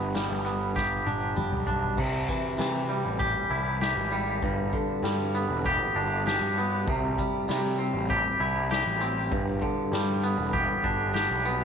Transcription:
Already playing: clean electric guitar G2 B3 G4
0.00 picked electric bass G1
0.15 clean electric guitar G3, snare, open hi-hat, shaker
0.30 picked electric bass G1
0.45 clean electric guitar B3, open hi-hat, shaker
0.62 shaker
0.76 clean electric guitar G4, kick, snare, shaker
1.07 clean electric guitar D4, high tom, shaker
1.21 shaker
1.36 clean electric guitar G3, mid tom, shaker
1.52 picked electric bass B1, mid tom
1.67 clean electric guitar D4, floor tom, shaker
1.82 floor tom, shaker
1.97 picked electric bass C2, clean electric guitar C3, kick, crash
2.29 clean electric guitar E3, kick, ride
2.58 picked electric bass C3, clean electric guitar E3, snare, ride
2.89 clean electric guitar G3, ride
3.05 picked electric bass A1
3.19 clean electric guitar G4, kick, ride
3.50 picked electric bass C2, clean electric guitar E4, ride
3.81 clean electric guitar G4, snare, ride
3.96 picked electric bass G#1
4.12 clean electric guitar G3, ride
4.42 picked electric bass G1, clean electric guitar G2, kick, ride
4.73 clean electric guitar D3, kick, ride
5.03 picked electric bass G2, clean electric guitar G3, snare, ride
5.34 clean electric guitar B3, ride
5.49 picked electric bass E1
5.65 clean electric guitar G4, kick, ride
5.95 picked electric bass G1, clean electric guitar D4, ride
6.27 clean electric guitar G4, snare, ride
6.41 picked electric bass G2
6.57 clean electric guitar B3, ride
6.87 picked electric bass C2, clean electric guitar C3, kick, ride
7.18 clean electric guitar G3, kick, ride
7.49 picked electric bass C3, clean electric guitar G3, snare, ride
7.79 clean electric guitar C4, ride
7.94 picked electric bass A1
8.10 clean electric guitar G4, kick, ride
8.40 picked electric bass C2, clean electric guitar E4, ride
8.71 clean electric guitar G4, snare, ride
8.86 picked electric bass A1
9.01 clean electric guitar C4, ride
9.31 picked electric bass G1, clean electric guitar G2, kick, ride
9.62 clean electric guitar D3, kick, ride
9.92 picked electric bass G2, clean electric guitar G3, snare, ride
10.23 clean electric guitar B3, ride
10.38 picked electric bass E1
10.53 clean electric guitar G4, kick, ride
10.84 picked electric bass G1, clean electric guitar D4, kick, ride
11.14 clean electric guitar G4, snare, ride
11.30 picked electric bass B1
11.45 clean electric guitar B3, ride

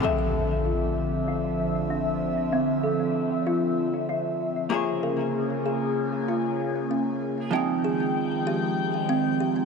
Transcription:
0.00 hollow-body jazz guitar D3 F3 C4, analog synth pad D3 F3 C4 E5, kalimba A4, impact
0.04 hollow-body jazz guitar E5
0.65 kalimba F4
1.28 kalimba E4
1.90 kalimba D4
2.52 kalimba C4
2.84 kalimba A4
3.47 kalimba F4
4.09 kalimba E4
4.70 analog synth pad C#3 A#3 C#4 G#4, hollow-body jazz guitar A#3 G#4 C5, kalimba F4
4.74 hollow-body jazz guitar C#5
5.03 kalimba A#4
5.66 kalimba G#4
6.28 kalimba F4
6.91 kalimba C#4
7.51 analog synth pad D#3 F3 G#3 G5, hollow-body jazz guitar F3 D#4 G5, kalimba C4
7.55 hollow-body jazz guitar G#3
7.84 kalimba G#4
8.47 kalimba G4
9.09 kalimba C4
9.40 kalimba G4

